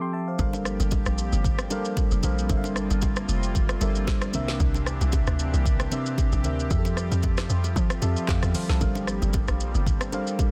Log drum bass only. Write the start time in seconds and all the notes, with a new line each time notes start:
0.39 G1
0.80 G1
1.06 A#1
1.33 G1
2.12 F1
2.23 A#1
2.50 G1
2.90 G1
3.29 F1
3.81 G1
4.34 C2
4.60 C2
5.01 C2
5.27 D2
5.54 C2
6.33 A#1
6.44 D2
6.71 F2
7.12 F2
7.50 F2
7.76 F3
8.02 F2
8.28 F2
8.43 E2
8.69 C2
8.81 G1
9.22 G1
9.48 A#1
9.75 G1